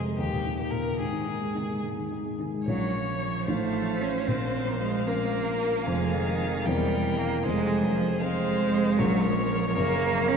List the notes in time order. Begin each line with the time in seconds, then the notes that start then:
Already playing: F2 C3 G#3 G#4
0.05 G#3
0.18 D#2 G4
0.33 A#2
0.45 D#4
0.59 A#3 G4
0.71 A#2 C#3 A#4
0.85 A#3
1.00 G#2 G#4
1.13 D#3
1.27 D#4
1.42 G#3
1.55 C3 D#3
1.69 G#3
1.83 G#2
1.97 D#3
2.11 D#4
2.25 G#3
2.39 C3 D#3
2.54 G#3
2.67 A#1 A#2 F3 F#3 C#4 C#5
2.95 F3
3.47 A1 A2 F3 A3 D#4 C5 F5
4.01 C#4
4.27 A#1 A#2 C4 F5
4.67 A#3
4.81 G#3
5.06 F3 A#3 C#4 A#4
5.86 F1 F2 F3 G#3 C4 G#4 C5
6.13 D#3
6.66 E1 E2 G3 A#3 C4 A#4 C5 G5
7.18 A#3
7.43 F1 F2 G#3 G#4 C5
7.83 F#3
7.96 F3
8.20 G#3 C4 C5 F5
8.98 A#1 A#2 F#3 A#3 C#4 A#4 C#5
9.24 F3
9.76 F#1 F#2 A#3 C#4 A#4
10.28 C#4